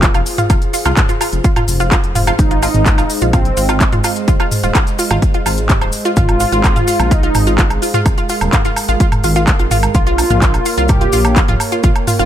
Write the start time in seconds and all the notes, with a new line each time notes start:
Already playing: F4 G#4 C5, impact
0.03 F4 F5, kick, clap, closed hi-hat, cabasa
0.14 F1 F4 F5, closed hi-hat, low woodblock
0.26 open hi-hat, cabasa
0.38 F4 F5, closed hi-hat, mid tom, cabasa
0.50 F1 F4 F5, kick, closed hi-hat, cabasa, low woodblock
0.62 closed hi-hat
0.73 F4 F5, open hi-hat, cabasa
0.85 C2 F4 F5, closed hi-hat, cabasa, low woodblock
0.97 kick, clap, closed hi-hat, mid tom, cabasa
1.09 F4 F5, closed hi-hat, cabasa
1.21 F4 F5, open hi-hat, cabasa, low woodblock
1.33 F1, closed hi-hat, cabasa
1.44 F4 F5, kick, closed hi-hat, cabasa
1.56 F4 F5, closed hi-hat, mid tom, low woodblock
1.68 F1, open hi-hat, cabasa
1.80 F4 F5, closed hi-hat, cabasa
1.92 F4 F5, kick, clap, closed hi-hat, cabasa, low woodblock
2.04 F1, closed hi-hat
2.15 F4 F5, mid tom, open hi-hat, cabasa
2.27 F4 F5, closed hi-hat, cabasa, low woodblock
2.39 G#1 G#3 D#4 G#4 D#5, kick, closed hi-hat, cabasa
2.51 F4 F5, closed hi-hat
2.63 F4 F5, open hi-hat, cabasa, low woodblock
2.74 G#1, closed hi-hat, mid tom, cabasa
2.86 F4 F5, kick, clap, closed hi-hat, cabasa
2.98 F4 F5, closed hi-hat, cabasa, low woodblock
3.10 open hi-hat, cabasa
3.21 A#1 F4 F5, closed hi-hat, cabasa
3.33 C4 F4 F5, kick, closed hi-hat, mid tom, cabasa, low woodblock
3.45 closed hi-hat
3.57 G#1 F4 F5, open hi-hat, cabasa
3.69 F4 F5, closed hi-hat, cabasa, low woodblock
3.81 kick, clap, closed hi-hat, cabasa
3.92 G#1 F4 F5, closed hi-hat, mid tom
4.04 F4 F5, open hi-hat, cabasa, low woodblock
4.16 closed hi-hat, cabasa
4.28 G#1 F4 F5, kick, closed hi-hat, cabasa
4.40 F4 F5, closed hi-hat, low woodblock
4.51 mid tom, open hi-hat, cabasa
4.63 D#1 F4 F5, closed hi-hat, cabasa
4.75 F4 F5, kick, clap, closed hi-hat, cabasa, low woodblock
4.87 closed hi-hat, cabasa
4.99 F4 F5, open hi-hat, cabasa
5.11 G#1 F4 F5, closed hi-hat, mid tom, cabasa, low woodblock
5.22 kick, closed hi-hat, cabasa
5.34 F4 F5, closed hi-hat
5.46 G#1 F4 F5, open hi-hat, cabasa, low woodblock
5.57 closed hi-hat, cabasa
5.69 G4 G5, kick, clap, closed hi-hat, mid tom, cabasa
5.81 D#1 C5 C6, closed hi-hat, low woodblock
5.92 open hi-hat, cabasa
6.05 F4 F5, closed hi-hat, cabasa
6.16 G#1 F4 F5, kick, closed hi-hat, mid tom, cabasa
6.29 closed hi-hat, low woodblock
6.40 F4 F5, open hi-hat, cabasa
6.52 G#1 F4 F5, closed hi-hat, cabasa
6.64 kick, clap, closed hi-hat, cabasa, low woodblock
6.76 F4 F5, closed hi-hat, mid tom, cabasa
6.88 F4 F5, open hi-hat, cabasa
7.00 A#1, closed hi-hat, cabasa, low woodblock
7.11 D#4 F4 F5, kick, closed hi-hat, cabasa
7.23 F4 F5, closed hi-hat
7.35 G#1, mid tom, open hi-hat, cabasa, low woodblock
7.47 F4 F5, closed hi-hat, cabasa
7.58 F4 F5, kick, clap, closed hi-hat, cabasa
7.70 G#1, closed hi-hat, low woodblock
7.82 F4 F5, open hi-hat, cabasa
7.94 F4 F5, closed hi-hat, mid tom, cabasa
8.06 G#1 A#4, kick, closed hi-hat, cabasa, low woodblock
8.18 F4 F5, closed hi-hat
8.29 F4 F5, open hi-hat, cabasa
8.41 D#1, closed hi-hat, cabasa, low woodblock
8.53 F4 F5, kick, clap, closed hi-hat, mid tom, cabasa
8.65 F4 F5, closed hi-hat, cabasa
8.76 open hi-hat, cabasa, low woodblock
8.88 G#1 F4 F5, closed hi-hat, cabasa
9.00 F4 F5, kick, closed hi-hat, cabasa
9.12 closed hi-hat, mid tom, low woodblock
9.24 G#1 F4 F5, open hi-hat, cabasa
9.36 F4 F5, closed hi-hat, cabasa
9.47 kick, clap, closed hi-hat, cabasa, low woodblock
9.59 G#1 F4 F5, closed hi-hat
9.71 F4 F5, mid tom, open hi-hat, cabasa
9.83 closed hi-hat, cabasa, low woodblock
9.94 A#1 A#3 F4 C#5 F5, kick, closed hi-hat, cabasa
10.07 F4 F5, closed hi-hat
10.18 open hi-hat, cabasa, low woodblock
10.30 A#1 F4 F5, closed hi-hat, mid tom, cabasa
10.42 F4 F5, kick, clap, closed hi-hat, cabasa
10.54 closed hi-hat, cabasa, low woodblock
10.66 F4 F5, open hi-hat, cabasa
10.77 C2 F4 F5, closed hi-hat, cabasa
10.88 G4, kick, closed hi-hat, mid tom, cabasa, low woodblock
11.01 F4 F5, closed hi-hat
11.13 A#1 F4 F5, open hi-hat, cabasa
11.25 closed hi-hat, cabasa, low woodblock
11.36 F4 F5, kick, clap, closed hi-hat, cabasa
11.48 A#1 F4 F5, closed hi-hat, mid tom
11.60 open hi-hat, cabasa, low woodblock
11.72 F4 F5, closed hi-hat, cabasa
11.83 A#1 F4 F5 G5, kick, closed hi-hat, cabasa
11.96 closed hi-hat, low woodblock
12.07 F4 F5, mid tom, open hi-hat, cabasa
12.19 F1 F4 F5, closed hi-hat, cabasa